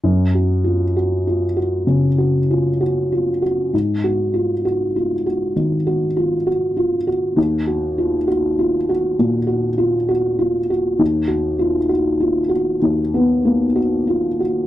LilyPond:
\new Staff \with { instrumentName = "Felt piano" } { \time 4/4 \key fis \major \tempo 4 = 66 \tuplet 3/2 { fis,8 fis'8 eis'8 fis'8 eis'8 fis'8 cis8 fis'8 eis'8 fis'8 eis'8 fis'8 } | \tuplet 3/2 { gis,8 fis'8 eis'8 fis'8 eis'8 fis'8 dis8 fis'8 eis'8 fis'8 eis'8 fis'8 } | \tuplet 3/2 { dis,8 fis'8 eis'8 fis'8 eis'8 fis'8 ais,8 fis'8 eis'8 fis'8 eis'8 fis'8 } | \tuplet 3/2 { dis,8 fis'8 eis'8 fis'8 eis'8 fis'8 dis,8 b8 ais8 fis'8 eis'8 fis'8 } | }